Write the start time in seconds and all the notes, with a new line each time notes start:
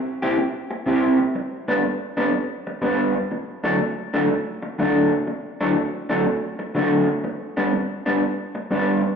0.22 C3 C4 E4 G4
0.38 muted clean electric guitar stroke
0.71 muted clean electric guitar stroke
0.86 C3 C4 E4 G4
1.19 muted clean electric guitar stroke
1.35 muted clean electric guitar stroke
1.68 G2 G3 B3 D4
1.84 muted clean electric guitar stroke
2.17 G2 G3 B3 D4
2.33 muted clean electric guitar stroke
2.67 muted clean electric guitar stroke
2.82 G2 G3 B3 D4
3.16 muted clean electric guitar stroke
3.31 muted clean electric guitar stroke
3.64 D3 F#3 A3 D4
3.81 muted clean electric guitar stroke
4.14 D3 F#3 A3 D4
4.30 muted clean electric guitar stroke
4.62 muted clean electric guitar stroke
4.79 D3 F#3 A3 D4
5.12 muted clean electric guitar stroke
5.27 muted clean electric guitar stroke
5.61 D3 F#3 A3 D4
5.76 muted clean electric guitar stroke
6.10 D3 F#3 A3 D4
6.27 muted clean electric guitar stroke
6.59 muted clean electric guitar stroke
6.75 D3 F#3 A3 D4
7.08 muted clean electric guitar stroke
7.24 muted clean electric guitar stroke
7.57 G2 G3 B3 D4
7.73 muted clean electric guitar stroke
8.06 G2 G3 B3 D4
8.22 muted clean electric guitar stroke
8.55 muted clean electric guitar stroke
8.71 G2 G3 B3 D4
9.03 muted clean electric guitar stroke